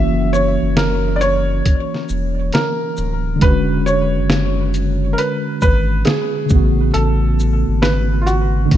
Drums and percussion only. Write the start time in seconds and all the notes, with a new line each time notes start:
0.34 shaker
0.77 snare, closed hi-hat
1.21 closed hi-hat, shaker
1.66 kick, closed hi-hat
1.94 snare
2.09 shaker
2.53 snare, closed hi-hat
2.97 shaker
3.41 kick, closed hi-hat
3.87 shaker
4.30 snare, closed hi-hat
4.74 closed hi-hat, shaker
5.18 closed hi-hat
5.61 kick, shaker
6.05 snare, closed hi-hat
6.49 kick, shaker
6.94 closed hi-hat
7.40 shaker
7.83 snare, closed hi-hat
8.27 closed hi-hat, shaker
8.71 kick, closed hi-hat